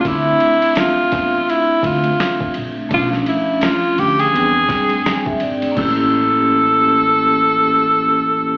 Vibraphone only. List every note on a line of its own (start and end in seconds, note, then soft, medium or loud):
0.03 2.86 A3 medium
0.03 2.86 C4 medium
0.03 2.87 E5 medium
0.08 2.88 D4 medium
2.89 4.30 A3 medium
2.89 4.30 C#4 medium
2.89 4.31 D4 medium
2.94 4.32 F3 medium
4.31 4.40 G3 medium
4.31 5.73 C4 medium
4.31 5.74 D4 medium
4.37 5.76 G#4 medium
4.37 5.75 G5 medium
5.05 5.24 G#5 medium
5.26 5.40 E5 medium
5.41 5.74 D5 medium
5.72 8.57 A#3 medium
5.72 8.57 C#4 medium
5.78 8.57 E4 medium
5.78 8.57 G4 medium